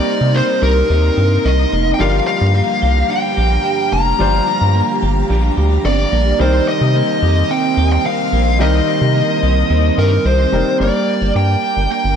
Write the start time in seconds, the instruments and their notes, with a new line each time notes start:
Already playing: overdriven electric guitar C3 G3 C4, grand piano G3 C4 D#4 A#4, clean electric guitar A#3 G4, string machine D#4 A#4 C6, lead electric guitar D5
0.07 clean electric guitar D#4
0.21 analog synth bass C3
0.34 overdriven electric guitar C3 G3 C4, clean electric guitar A#3, lead electric guitar C5
0.62 analog synth bass C2, clean electric guitar G4, lead electric guitar A#4
0.89 analog synth bass D#2, overdriven electric guitar C3 G3 C4, clean electric guitar D#4
1.17 analog synth bass G2, clean electric guitar G4
1.45 analog synth bass C2, clean electric guitar D#4, lead electric guitar D#5
1.72 analog synth bass F1, clean electric guitar A#3
1.94 lead electric guitar G5
1.99 analog synth bass G1, overdriven electric guitar G2 D3 G3, clean electric guitar F3 G4, grand piano G3 D4 F4 A#4, string machine G4 F5 A#5, lead electric guitar F5
2.27 clean electric guitar D4, lead electric guitar F5
2.41 analog synth bass G2
2.54 overdriven electric guitar G2 D3 G3, clean electric guitar A#3
2.82 analog synth bass C2, clean electric guitar G4
3.09 overdriven electric guitar G2 D3 G3, clean electric guitar D4, lead electric guitar G5
3.37 analog synth bass A#1, clean electric guitar G4
3.65 clean electric guitar D4
3.92 analog synth bass F1, clean electric guitar A#3, lead electric guitar A#5
4.19 analog synth bass G1, overdriven electric guitar G2 D3 G3, clean electric guitar F3 G4, grand piano G3 D4 F4 C5
4.47 clean electric guitar D4
4.61 analog synth bass G2
4.75 clean electric guitar A#3
5.02 analog synth bass G1, clean electric guitar G4
5.29 analog synth bass A#1, overdriven electric guitar G2 D3 G3, clean electric guitar D4
5.57 analog synth bass D2, clean electric guitar G4
5.85 analog synth bass G1, clean electric guitar C4, lead electric guitar D5
5.99 clean electric guitar D4
6.12 analog synth bass A#1, clean electric guitar A#3
6.39 analog synth bass C2, overdriven electric guitar C3 G3 C4, clean electric guitar D#3 G4, grand piano G3 C4 D#4 A#4, string machine A#4 D#5 C6, lead electric guitar C5
6.67 clean electric guitar C4, lead electric guitar D#5
6.81 analog synth bass C3
6.94 overdriven electric guitar C3 G3 C4, clean electric guitar A#3
7.22 analog synth bass F2, clean electric guitar G4
7.49 overdriven electric guitar C3 G3 C4, clean electric guitar C4, lead electric guitar G5
7.77 analog synth bass D#2, clean electric guitar G4
7.92 lead electric guitar G5
8.05 clean electric guitar C4, lead electric guitar F5
8.32 analog synth bass A#1, overdriven electric guitar G3 C4, clean electric guitar A#3
8.59 analog synth bass C2, overdriven electric guitar C3 G3 C4, clean electric guitar D#3 G4, grand piano G3 C4 D#4 A#4, lead electric guitar D#5
8.88 clean electric guitar C4
9.02 analog synth bass C3
9.15 clean electric guitar A#3
9.43 analog synth bass C2, clean electric guitar G4
9.69 analog synth bass D#2, overdriven electric guitar C3 G3 C4, clean electric guitar C4
9.98 analog synth bass G2, clean electric guitar G4, lead electric guitar A#4
10.25 analog synth bass C2, clean electric guitar C4, lead electric guitar C5
10.52 analog synth bass F1, grand piano G3 C4 D#4 A#4, clean electric guitar A#3
10.79 analog synth bass G1, grand piano G3 A#3 D4 A#4, clean electric guitar A#3, string machine A#4 G5 D6, lead electric guitar D5
11.08 clean electric guitar C4
11.22 analog synth bass G1, clean electric guitar D4
11.35 analog synth bass G2, clean electric guitar G4, lead electric guitar G5
11.63 clean electric guitar D4
11.77 analog synth bass G1
11.91 clean electric guitar A#3, lead electric guitar G5
12.04 analog synth bass G1